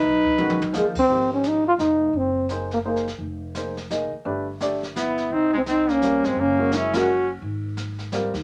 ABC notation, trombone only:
X:1
M:3/4
L:1/16
Q:"Swing" 1/4=170
K:Bmix
V:1 name="Trombone"
D8 G,2 =C2- | [K:Ab] C2 D2 E2 F2 E4 | C4 z2 B,2 B,3 z | z12 |
z8 _F4 | E2 C2 E2 D4 C2 | D4 _F2 _G4 z2 | z12 |]